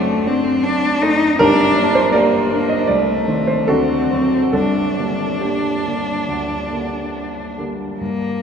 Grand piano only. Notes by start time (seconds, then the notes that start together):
Already playing: F#1 F#2 A3 C4 D4 F#4 A4 D5
0.26 A3 C4 D4
1.02 A3 C4 D4
1.39 G1 G2 D4 G4 A#4
1.77 G3 A#3 D4
1.95 C5
2.12 G4 A#4 D5
2.51 G3 A#3 D4
2.69 D#5
2.87 C2 D5
3.27 D#3 A3 C4
3.47 C5
3.67 D2 D4 F#4 A4
4.10 D3 F#3 C4
4.53 G1 G2 D4 A4
4.97 D3 G3 A#3
5.41 A#3 D4 G4
5.85 D3 G3 A#3
6.28 D2
6.71 D3 G3 A#3
7.58 D3 G3 A#3
8.01 G2